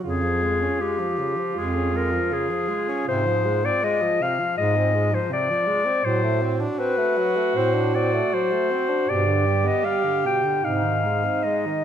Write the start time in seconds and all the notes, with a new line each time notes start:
0.03 F2 C#3 F4 G#4
0.23 F3
0.43 G#3
0.62 C#4
0.80 G#3 G4
0.99 F3
1.18 C#3
1.36 F3
1.56 F2 G#3 G#4
1.75 C#4
1.93 G#3 A#4
2.13 F3
2.32 C#3 G#4
2.50 F3
2.69 G#3
2.88 C#4
3.07 G#2 C3 C5
3.27 F3
3.46 G#3
3.64 C4 D5
3.83 G#3 D#5
4.02 F3
4.21 C3 F5
4.39 F3
4.58 G#2 G#3 D#5
4.76 C4
4.94 G#3
5.12 F3 C5
5.30 C3 D5
5.50 F3
5.67 G#3
5.85 C4
6.05 A2 F#3 F#4 C5
6.23 A3
6.42 C4
6.61 D4
6.79 C4 B4
6.98 A3
7.17 F#3
7.36 A3
7.55 A2 C4 C5
7.75 D4
7.95 C4 D5
8.14 A3
8.33 F#3 C5
8.53 A3
8.71 C4
8.89 D4
9.08 G2 B2 G4 D5
9.27 D3
9.46 G3
9.65 B3 D#5
9.84 G3 F5
10.04 D3
10.25 B2 G5
10.44 D3
10.63 G#2 C3 D#4 F5
10.84 D#3
11.04 G#3
11.24 C4
11.44 G#3 D#5
11.66 D#3